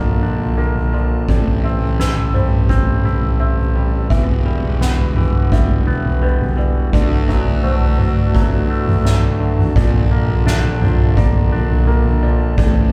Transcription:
Already playing: A#1 A#2 D3 F3 A#3 D4 F4 D5 A5
0.23 D4, floor tom
0.40 floor tom
0.58 A#3 A#4
0.76 floor tom
0.93 F3 D5
1.27 A1 A2 E3 C4 G4 D5, kick, floor tom
1.64 C4 E5
1.81 floor tom
1.99 E4 B4, snare
2.17 floor tom
2.34 G3 C5, floor tom, mid tom
2.69 C4, kick, floor tom
3.04 E4, floor tom
3.22 floor tom
3.40 C4 E5
3.57 floor tom
3.76 G3
4.10 E1 E3 B3 F#4 E5, kick, floor tom
4.46 G3
4.63 floor tom
4.81 B3 F#5, snare
4.99 floor tom
5.16 E3, floor tom, mid tom
5.52 G3 E5, kick, floor tom
5.87 B3, floor tom
6.05 floor tom
6.22 G3 B4
6.41 floor tom
6.57 E3 D5
6.93 D2 D3 D4 F#4 D5 A5, kick, floor tom
7.29 F#3 E5, kick
7.46 floor tom
7.64 A3 C5, floor tom
7.81 floor tom
7.99 D3 D5, floor tom, mid tom
8.34 F#3, kick, floor tom
8.70 A3
8.87 floor tom, mid tom
9.05 F#3 E5, snare
9.23 floor tom
9.40 D3
9.59 mid tom
9.76 A#1 A#2 D3 A#3 F4 D5, kick, floor tom
10.11 A#3
10.29 floor tom
10.46 D4 E5, snare
10.64 floor tom
10.82 F3, floor tom, mid tom
11.17 A#3 D5, kick, floor tom
11.52 D4, floor tom
11.70 floor tom
11.87 A#3 A#4
12.05 floor tom
12.22 F3 D5
12.58 A1 A2 E3 C4 G4 D5, kick, floor tom

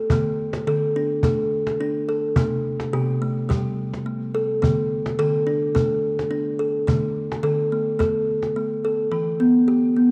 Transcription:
Already playing: A4
0.10 D3 A3, cajon bass
0.53 cajon slap
0.67 D3 A4
0.96 D4
1.23 A3 A4, cajon bass
1.67 cajon slap
1.80 D4
2.08 A4
2.36 C3 A3, cajon bass
2.80 cajon slap
2.94 C3 G4
3.22 A3
3.49 G3 G4, cajon bass
3.93 cajon slap
4.06 A3
4.35 A4
4.62 D3 A3, cajon bass
5.06 cajon slap
5.19 D3 A4
5.46 D4
5.75 A3 A4, cajon bass
6.19 cajon slap
6.31 D4
6.59 A4
6.87 D3 A3, cajon bass
7.16 cajon slap
7.31 cajon slap
7.43 D3 A4
7.72 A3
7.99 A3 A4, cajon bass, cajon slap
8.28 cajon slap
8.43 cajon slap
8.56 A3
8.84 A4, cajon slap
9.11 E3
9.40 B3
9.68 G4
9.96 B3

